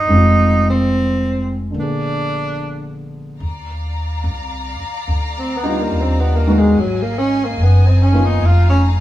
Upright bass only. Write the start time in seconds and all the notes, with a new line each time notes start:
0.08 F1
1.74 A#1
3.40 D#2
4.24 C2
4.80 muted upright bass stroke
5.08 D2
5.91 D#2
6.74 G#1
7.57 F#1
8.40 F1